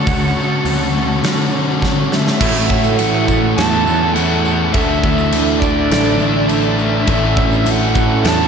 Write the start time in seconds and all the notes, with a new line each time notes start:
Already playing: A3 C#4 F#4 C#5 F#5 A5 C#6
0.06 D2 D3, kick, open hi-hat
0.36 F#4
0.65 D2 C#4, open hi-hat
0.93 A3
1.23 D3 F#4, snare, open hi-hat
1.52 C#4
1.82 D3, kick, snare
2.11 A3 E5, snare
2.27 snare
2.40 A2 E3 A3 C#4 E4 F#4 A4 F#5 C#6, kick, crash, tambourine
2.69 E3 A3, kick
2.84 tambourine
2.97 A2 E3 F#5, tambourine, crash
3.01 A3
3.27 A2 E3 A3 C#4 E4, kick, tambourine
3.55 E2 A2 E3 A5, snare, crash
3.60 A3
3.72 tambourine
3.86 E2 E3 A3, tambourine
4.13 A2 E3 C#4 E4 F#5, tambourine, crash
4.19 A3
4.44 E3 A3, tambourine
4.73 D2 D3 A3 D4 E4 E5 A5, kick, tambourine, crash
4.77 D4
5.04 A3 D4, kick
5.18 tambourine
5.32 D3 A3 D4, tambourine, crash
5.59 D4 E4 D5, kick, tambourine
5.65 D3 A3
5.90 A1 D3 A3 D4, snare, crash
6.06 tambourine
6.20 A1 A3 D4, tambourine
6.49 D3 A3 D4 E4, tambourine, crash
6.78 A3 D4 E5, tambourine
7.06 A1 A2 E3 F#3 A3 C#4 E4 F#5, kick, tambourine, crash
7.36 E3 A3, kick
7.52 tambourine
7.65 A2 E3 A3, tambourine, crash
7.71 F#5
7.81 tambourine
7.95 A2 E3 A3 C#4 E4, kick, tambourine
8.24 E2 A2 E3 A3 A5, snare, crash